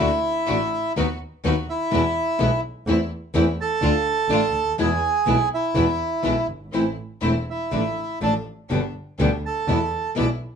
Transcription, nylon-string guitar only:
0.47 0.56 D3 medium
0.47 0.56 A3 medium
0.47 0.57 D4 medium
0.47 0.57 F#4 medium
0.96 1.05 D#3 medium
0.96 1.05 F#3 medium
0.96 1.06 B3 medium
0.96 1.05 D#4 medium
0.96 1.06 B4 medium
1.44 1.53 D#3 medium
1.44 1.53 F#3 medium
1.44 1.53 B3 medium
1.44 1.53 D#4 medium
1.44 1.53 B4 medium
1.91 2.00 B2 medium
1.91 2.00 E3 medium
1.91 2.01 G#3 medium
1.91 2.01 B3 medium
1.91 2.01 E4 medium
2.38 2.48 B2 medium
2.38 2.48 E3 medium
2.38 2.48 G#3 loud
2.38 2.49 B3 medium
2.38 2.48 E4 medium
2.87 2.96 E3 medium
2.87 2.96 A3 medium
2.87 2.96 C4 medium
2.87 2.97 E4 medium
3.34 3.43 E3 loud
3.34 3.44 A3 medium
3.34 3.44 C4 loud
3.34 3.44 E4 loud
3.81 3.91 D3 medium
3.81 3.91 A3 medium
3.81 3.91 D4 medium
3.81 3.91 F4 medium
4.29 4.39 D3 medium
4.29 4.39 A3 loud
4.29 4.39 D4 loud
4.29 4.40 F4 loud
4.78 4.87 B2 medium
4.78 4.87 E3 medium
4.78 4.88 G#3 medium
4.78 4.88 B3 loud
4.78 4.88 E4 loud
5.26 5.36 B2 medium
5.26 5.36 E3 medium
5.26 5.36 G#3 medium
5.26 5.36 B3 loud
5.26 5.37 E4 medium
5.74 5.84 B2 medium
5.74 5.84 E3 medium
5.74 5.85 G#3 medium
5.74 5.85 B3 medium
5.74 5.85 E4 medium
6.23 6.33 B2 medium
6.23 6.33 E3 medium
6.23 6.33 G#3 medium
6.23 6.34 B3 medium
6.23 6.33 E4 medium
6.73 6.83 E3 medium
6.73 6.83 A3 medium
6.73 6.83 C4 medium
6.73 6.84 E4 medium
7.21 7.32 E3 medium
7.21 7.32 A3 medium
7.21 7.32 C4 medium
7.21 7.32 E4 medium
7.71 7.81 D3 medium
7.71 7.81 A3 medium
7.71 7.81 D4 medium
7.71 7.82 F4 medium
8.21 8.30 D3 medium
8.21 8.31 A3 medium
8.21 8.31 D4 medium
8.21 8.31 F4 medium
8.70 8.79 B2 medium
8.70 8.80 D3 medium
8.70 8.80 G3 medium
8.70 8.80 B3 loud
8.70 8.80 G4 medium
9.19 9.28 B2 medium
9.19 9.28 D3 medium
9.19 9.28 G3 medium
9.19 9.28 B3 loud
9.19 9.29 G4 loud
9.68 9.77 B2 medium
9.68 9.77 E3 medium
9.68 9.77 G#3 medium
9.68 9.77 B3 medium
9.68 9.78 E4 medium
10.15 10.25 B2 medium
10.15 10.25 E3 medium
10.15 10.25 G#3 medium
10.15 10.25 B3 medium
10.15 10.26 E4 medium

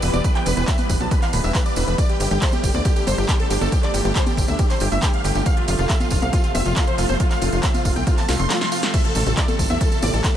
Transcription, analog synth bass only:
0.03 0.10 E1 medium
0.13 0.21 E1 medium
0.46 0.54 E1 medium
0.57 0.65 E1 medium
0.90 0.97 E1 medium
1.00 1.08 B1 medium
1.33 1.41 D1 loud
1.44 1.52 E1 medium
1.77 1.84 E1 loud
1.87 1.95 E1 medium
2.20 2.28 G1 medium
2.31 2.38 G1 medium
2.63 2.71 G1 medium
2.74 2.82 D2 medium
3.07 3.15 G1 medium
3.18 3.25 G1 medium
3.50 3.58 G1 medium
3.61 3.69 G1 medium
3.94 4.01 G1 medium
4.05 4.12 G1 medium
4.37 4.45 G1 medium
4.48 4.56 D2 medium
4.81 4.88 G1 loud
4.92 4.99 G1 medium
5.24 5.32 G1 medium
5.35 5.43 G1 medium
5.68 5.75 F1 loud
5.79 5.86 F1 medium
6.11 6.19 F1 medium
6.22 6.30 C2 medium
6.55 6.62 F1 loud
6.66 6.73 F1 medium
6.98 7.06 F1 medium
7.09 7.17 F1 medium
7.42 7.49 F1 medium
7.53 7.60 F1 medium
7.85 7.93 F1 medium
7.96 8.04 C2 medium
8.29 8.36 C2 loud
8.39 8.47 F1 medium
9.16 9.23 A1 medium
9.26 9.34 A1 medium
9.59 9.67 A1 medium
9.70 9.78 E2 medium
10.03 10.10 A1 loud
10.14 10.21 A1 medium

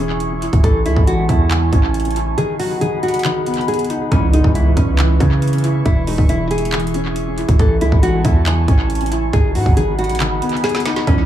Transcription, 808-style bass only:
0.00 0.49 E1 loud
0.53 0.63 E1 loud
0.64 0.87 A1 loud
0.85 0.96 C#2 loud
0.96 1.28 A1 loud
1.29 1.71 E2 loud
1.73 2.35 A1 loud
4.12 4.43 C#2 loud
4.44 4.76 C#2 loud
4.77 5.19 C#2 loud
5.20 5.83 C#3 loud
5.86 6.17 E1 loud
6.18 7.45 E1 loud
7.49 7.59 E1 loud
7.59 7.83 A1 loud
7.81 7.92 C#2 loud
7.92 8.23 A1 loud
8.25 8.66 E2 loud
8.68 9.31 A1 loud
9.33 9.57 G#1 loud
9.55 9.65 G#2 loud
9.66 10.11 G#1 loud
10.09 10.27 A1 loud
10.26 10.41 G#1 loud
11.07 11.26 C#2 loud

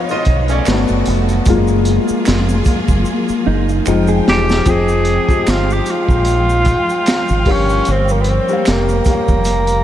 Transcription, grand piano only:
0.00 0.62 F3 medium
0.00 0.63 B3 soft
0.00 0.63 D#4 medium
0.00 0.68 B4 medium
0.00 0.68 C#5 medium
0.00 0.11 D#5 medium
0.00 0.68 F5 medium
0.11 0.51 D#5 loud
0.52 0.87 D5 medium
0.68 1.43 A3 medium
0.68 1.43 B3 soft
0.68 1.44 F#4 medium
1.48 2.63 G#3 medium
1.48 2.63 A#3 medium
1.48 2.64 F4 medium
3.86 4.62 F3 medium
3.86 4.63 G#3 soft
3.86 4.63 D#4 medium
4.66 5.13 F3 medium
4.66 5.13 C4 medium
4.66 5.14 G#4 medium
4.66 5.14 G5 medium
4.70 5.15 D#5 loud
5.28 6.51 F3 medium
5.28 6.52 C4 medium
5.28 6.52 G4 medium
5.28 6.53 G#4 medium
5.32 6.53 D#5 medium
7.45 8.25 G3 medium
7.45 8.26 G4 medium
7.45 8.27 A#4 medium
7.45 8.27 C#5 medium
7.49 8.28 F5 medium
8.48 8.94 G3 medium
8.48 8.94 G4 medium
8.48 8.95 A#4 medium
8.48 8.96 C#5 medium
8.53 8.96 F5 medium
9.06 9.70 G3 medium
9.06 9.70 G4 medium
9.06 9.71 A#4 medium
9.06 9.71 C#5 medium
9.10 9.72 F5 medium

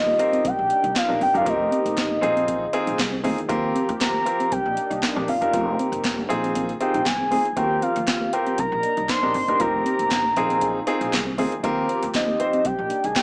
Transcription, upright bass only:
0.00 0.15 D#2 loud
0.45 0.56 C2 medium
0.59 0.68 A#1 medium
0.84 0.93 C2 loud
1.10 1.19 A#1 medium
1.21 1.32 G1 medium
1.34 1.44 F#1 medium
1.47 1.67 F1 loud
1.85 1.95 F1 medium
1.97 2.18 G1 medium
2.23 2.64 A#1 loud
2.87 2.97 A#1 medium
2.99 3.26 C2 medium
3.25 3.45 E2 loud
3.50 3.70 D#2 loud
3.89 3.98 D#2 loud
4.01 4.21 D#2 loud
4.52 4.63 C2 loud
4.66 4.75 A#1 medium
4.91 5.00 C2 loud
5.16 5.26 A#1 loud
5.28 5.39 G1 medium
5.42 5.51 F#1 medium
5.54 5.74 F1 loud
5.92 6.02 F1 loud
6.04 6.25 G1 medium
6.29 6.71 A#1 loud
6.94 7.04 A#1 medium
7.06 7.33 C2 medium
7.32 7.52 E2 medium
7.57 7.77 D#2 loud
7.96 8.05 D#2 loud
8.08 8.28 D#2 medium
8.59 8.69 C2 loud
8.72 8.81 A#1 loud
8.98 9.07 C2 medium
9.23 9.32 A#1 medium
9.35 9.45 G1 loud
9.48 9.58 F#1 medium
9.60 9.81 F1 loud
9.99 10.09 F1 medium
10.11 10.32 G1 loud
10.37 10.78 A#1 loud
11.01 11.10 A#1 medium
11.13 11.40 C2 loud
11.39 11.59 E2 loud
11.64 11.84 D#2 loud
12.03 12.12 D#2 loud
12.14 12.35 D#2 medium
12.65 12.76 C2 medium
12.79 12.88 A#1 medium
13.04 13.14 C2 medium

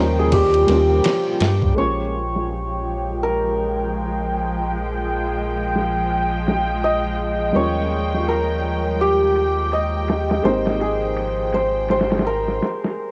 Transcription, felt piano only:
0.00 0.67 G3 medium
0.00 0.69 A#3 medium
0.00 0.70 C#4 medium
0.00 0.72 F4 loud
0.67 1.73 G3 medium
0.67 1.73 A#3 medium
0.67 1.74 C#4 medium
0.72 1.75 F4 medium
1.74 7.50 G#3 medium
1.74 7.51 A#3 medium
1.74 7.52 C#4 medium
1.79 7.53 F4 medium
7.53 10.40 G3 medium
7.53 10.40 A#3 medium
7.53 10.41 C#4 medium
7.57 10.42 F4 medium
10.42 12.60 G#3 medium
10.42 12.61 A#3 medium
10.42 12.62 C4 medium
10.47 12.62 D#4 medium

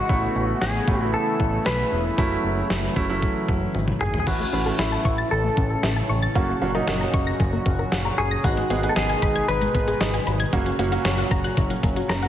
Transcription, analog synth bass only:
0.09 0.28 A1 loud
0.36 0.54 A1 medium
0.62 0.80 A1 loud
0.88 1.15 A1 loud
1.40 1.58 A1 loud
1.66 1.84 B1 loud
1.92 2.10 E1 medium
2.18 2.36 F#1 loud
2.44 2.62 F#1 medium
2.70 2.89 F#1 loud
2.96 3.24 F#1 loud
3.49 3.67 F#1 medium
3.75 3.93 G#1 medium
4.01 4.19 G#1 medium
4.27 4.45 A1 loud
4.53 4.71 A1 medium
4.79 4.97 A1 loud
5.05 5.23 A1 loud
5.31 5.49 A1 loud
5.57 5.75 A1 loud
5.83 6.02 A1 loud
6.09 6.28 A1 medium
6.35 6.54 F#1 loud
6.62 6.80 F#1 loud
6.88 7.06 F#1 loud
7.14 7.32 F#1 medium
7.40 7.58 F#1 loud
7.66 7.84 F#1 loud
7.92 8.10 F#1 loud
8.18 8.36 F#1 loud
8.44 8.62 G#1 loud
8.70 8.89 G#1 loud
8.96 9.15 G#1 loud
9.22 9.41 G#1 loud
9.49 9.67 G#1 loud
9.75 9.93 G#1 medium
10.01 10.19 G#1 loud
10.27 10.45 G#1 loud
10.53 10.71 F#1 loud
10.79 10.97 F#1 medium
11.05 11.23 F#1 loud
11.31 11.49 F#1 medium
11.57 11.76 F#1 loud
11.83 12.02 F#1 loud
12.09 12.28 F#1 loud

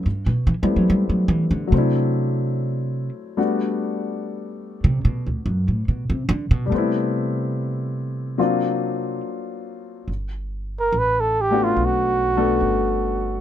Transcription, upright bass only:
0.06 0.26 G2 medium
0.26 0.46 B2 medium
0.47 0.53 E3 medium
0.63 0.76 G3 medium
0.76 0.87 F#3 medium
0.90 1.09 G3 medium
1.09 1.28 F#3 medium
1.28 1.50 E3 medium
1.51 1.67 D3 medium
1.72 3.08 C3 medium
4.84 5.00 C3 medium
5.05 5.26 B2 medium
5.27 5.45 D2 medium
5.46 5.66 F#2 medium
5.68 5.84 A2 medium
5.88 6.09 B2 medium
6.10 6.28 C3 medium
6.29 6.49 D3 loud
6.51 6.67 B2 medium
6.72 9.20 C3 medium
10.08 10.90 G1 medium
10.92 11.74 A1 medium
11.77 12.59 B1 medium
12.60 13.41 G1 medium

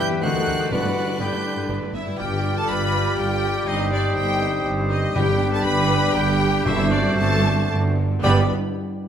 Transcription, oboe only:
0.00 0.25 B4 medium
0.23 0.74 C5 medium
0.72 1.20 B4 medium
1.20 1.92 B4 medium
2.19 3.69 D5 medium
3.68 5.14 C5 medium
5.15 6.63 B4 loud
6.66 7.95 C5 loud
8.23 8.44 D5 loud

